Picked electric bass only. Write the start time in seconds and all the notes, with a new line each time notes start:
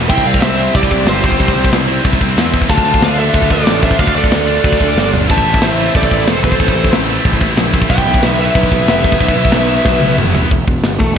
0.10 C2
0.26 C2
0.41 C2
0.75 C2
0.91 C2
1.06 G1
1.39 C2
1.55 C2
1.72 C2
2.05 C2
2.21 C2
2.37 E2
2.69 D2
2.85 D2
3.01 D2
3.34 D2
3.50 D2
3.67 A1
3.99 D2
4.15 D2
4.31 D2
4.64 D2
4.80 D2
4.95 G1
5.30 A1
5.45 A1
5.61 A1
5.95 A1
6.11 A1
6.26 E1
6.60 A1
6.75 A1
6.91 A1
7.25 A1
7.41 A1
7.56 A#1
7.90 B1
8.05 B1
8.22 B1
8.55 B1
8.72 B1
8.87 F1
9.21 B1
9.36 B1
9.53 B1
9.85 B1
10.02 B1
10.18 F1
10.51 E1
10.67 E1
10.83 G1
11.00 E1